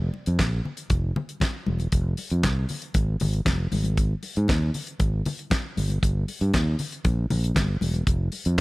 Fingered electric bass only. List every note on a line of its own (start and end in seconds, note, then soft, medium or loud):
0.27 0.37 F2 medium
0.39 0.60 A#1 medium
0.91 1.11 F1 medium
1.68 1.88 E1 medium
1.93 2.13 F1 medium
2.31 2.41 F2 medium
2.44 2.64 C2 medium
2.95 3.15 G#1 medium
3.21 3.41 G#1 medium
3.47 3.67 F1 medium
3.73 4.13 G#1 medium
4.37 4.47 G#2 medium
4.49 4.69 D#2 medium
5.00 5.20 G#1 loud
5.78 5.98 G1 medium
6.03 6.23 G1 medium
6.41 6.51 G2 medium
6.54 6.74 D#2 medium
7.05 7.25 A#1 loud
7.31 7.51 A#1 medium
7.56 7.76 G1 medium
7.82 8.02 E1 medium
8.07 8.27 F1 medium
8.46 8.56 F2 medium